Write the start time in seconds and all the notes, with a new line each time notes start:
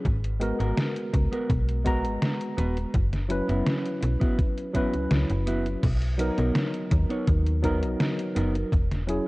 0.05 G#1, kick, closed hi-hat
0.24 closed hi-hat
0.40 G#3 B3 F#4 A#4, muted clean electric guitar stroke, closed hi-hat
0.59 G#1 B3 F#4 A#4, closed hi-hat
0.77 snare, closed hi-hat
0.96 closed hi-hat
1.13 C#2, muted clean electric guitar stroke, kick, closed hi-hat
1.32 B3 F#4 A#4, closed hi-hat
1.49 B1, kick, closed hi-hat
1.69 closed hi-hat
1.84 G#3 B3 F#4 A#4 A#5, kick, closed hi-hat
2.05 G#1, closed hi-hat
2.22 snare, closed hi-hat
2.41 closed hi-hat
2.57 D#1 B3 F#4 B4, closed hi-hat
2.77 closed hi-hat
2.94 F#1, kick, closed hi-hat
3.13 snare, closed hi-hat
3.29 F#3 C#4 E4 B4, muted clean electric guitar stroke, closed hi-hat
3.48 F#1 B3 E4 F#4, closed hi-hat
3.67 snare, closed hi-hat
3.86 closed hi-hat
4.01 B1, muted clean electric guitar stroke, closed hi-hat
4.20 B3 E4 F#4, kick, closed hi-hat
4.39 kick, closed hi-hat
4.58 closed hi-hat
4.73 F#3 B3 C#4 E4 F#4 B4, kick, closed hi-hat
4.93 C#2, closed hi-hat
5.11 C#2, snare, closed hi-hat
5.30 F#1, closed hi-hat
5.46 B3 E4 F#4, closed hi-hat
5.66 closed hi-hat
5.83 B1, kick, closed hi-hat, crash
6.02 closed hi-hat
6.18 F#3 B3 D#4 A#4, muted clean electric guitar stroke, closed hi-hat
6.38 B1 B3 D#4 A#4, closed hi-hat
6.55 snare, closed hi-hat
6.74 closed hi-hat
6.91 D#2, muted clean electric guitar stroke, kick, closed hi-hat
7.09 B3 D#4 C#5, closed hi-hat
7.27 D#2, kick, closed hi-hat
7.47 closed hi-hat
7.62 F#3 B3 D#4 A#4, kick, closed hi-hat
7.83 B1, closed hi-hat
8.00 snare, closed hi-hat
8.19 closed hi-hat
8.35 F#1 B3 D#4 A#4, closed hi-hat
8.55 closed hi-hat
8.72 E1, kick, closed hi-hat
8.91 snare, closed hi-hat
9.07 F#3 C#4 E4 G#4, muted clean electric guitar stroke, closed hi-hat